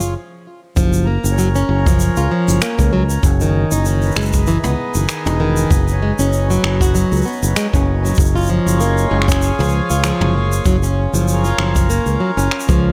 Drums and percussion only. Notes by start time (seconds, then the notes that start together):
0.00 shaker
0.77 kick, shaker
0.93 shaker
1.25 shaker
1.38 shaker
1.55 shaker
1.86 kick, shaker
2.00 shaker
2.16 shaker
2.48 shaker
2.62 finger snap, shaker
2.79 kick, shaker
3.10 shaker
3.23 kick, shaker
3.41 shaker
3.71 shaker
3.85 shaker
4.02 shaker
4.05 shaker
4.11 shaker
4.15 finger snap, shaker
4.21 shaker
4.25 shaker
4.33 kick, shaker
4.46 shaker
4.63 mid tom, shaker
4.94 shaker
5.09 finger snap, shaker
5.26 mid tom, shaker
5.57 shaker
5.71 kick, shaker
5.88 shaker
6.19 shaker
6.33 shaker
6.51 shaker
6.64 finger snap
6.81 kick, shaker
6.95 shaker
7.12 shaker
7.16 shaker
7.22 shaker
7.26 shaker
7.32 shaker
7.36 shaker
7.43 shaker
7.56 finger snap, shaker
7.73 kick, shaker
8.05 shaker
8.15 kick, shaker
8.20 shaker
8.25 shaker
8.36 shaker
8.40 shaker
8.43 shaker
8.46 shaker
8.68 shaker
8.80 shaker
8.98 shaker
9.22 finger snap
9.28 finger snap, kick, shaker
9.42 shaker
9.59 mid tom, shaker
9.63 shaker
9.69 shaker
9.90 shaker
10.04 finger snap, shaker
10.21 mid tom
10.52 shaker
10.65 kick, shaker
10.83 shaker
11.14 shaker
11.28 shaker
11.44 shaker
11.58 finger snap
11.76 kick, shaker
11.90 shaker
12.06 shaker
12.38 shaker
12.51 finger snap
12.60 shaker
12.68 kick, shaker